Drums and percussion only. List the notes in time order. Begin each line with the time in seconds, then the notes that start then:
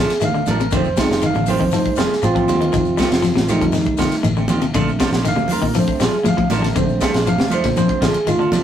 0.09 snare, ride bell, shekere
0.21 ride bell, high conga, claves, shekere
0.35 shekere
0.46 ride bell, high conga, low conga, shekere
0.59 ride bell, shekere
0.71 kick, ride bell, high conga, low conga, claves, shekere
0.84 shekere
0.97 kick, snare, ride bell, high conga, shekere
1.09 snare, shekere
1.21 ride bell, high conga, claves, shekere
1.34 high conga, shekere
1.46 open hi-hat, high conga, low conga, claves, shekere
1.59 kick, shekere
1.71 ride bell, shekere
1.84 kick, claves, shekere
1.96 snare, ride bell, shekere
2.09 snare, shekere
2.22 ride bell, high conga, claves, shekere
2.36 kick, shekere
2.48 ride bell, high conga, low conga, shekere
2.61 ride bell
2.72 kick, ride bell, claves, shekere
2.85 shekere
2.98 kick, snare, ride bell, high conga, shekere
3.10 snare, ride bell, shekere
3.23 snare, ride bell, high conga, claves, shekere
3.36 snare, high conga, shekere
3.48 ride bell, low conga, claves, shekere
3.61 kick, ride bell, shekere
3.72 snare, ride bell, high conga, low conga, shekere
3.85 kick, claves, shekere
3.97 kick, snare, ride bell, shekere
4.11 snare, ride bell, shekere
4.23 ride bell, high conga, claves, shekere
4.37 shekere
4.48 ride bell, high conga, low conga, shekere
4.62 ride bell, shekere
4.74 kick, ride bell, claves, shekere
4.88 shekere
5.00 kick, snare, ride bell, high conga, shekere
5.12 snare, shekere
5.25 snare, ride bell, high conga, claves, shekere
5.37 high conga, shekere
5.48 open hi-hat, high conga, low conga, claves, shekere
5.62 kick, shekere
5.74 ride bell, high conga, shekere
5.88 kick, claves, shekere
6.00 snare, ride bell, shekere
6.13 shekere
6.24 ride bell, high conga, claves, shekere
6.38 kick, high conga, shekere
6.50 snare, ride bell, high conga, low conga, shekere
6.64 snare, ride bell
6.75 kick, ride bell, high conga, low conga, claves, shekere
6.89 shekere
7.01 kick, snare, ride bell, high conga, shekere
7.14 snare, ride bell, shekere
7.26 ride bell, high conga, claves, shekere
7.38 snare, high conga, shekere
7.50 ride bell, low conga, claves, shekere
7.64 kick, snare, ride bell, shekere
7.76 ride bell, high conga, low conga, shekere
7.89 kick, claves, shekere
8.02 kick, snare, ride bell, shekere
8.14 ride bell, shekere
8.27 ride bell, high conga, claves, shekere
8.41 shekere
8.52 snare, ride bell, high conga, low conga, shekere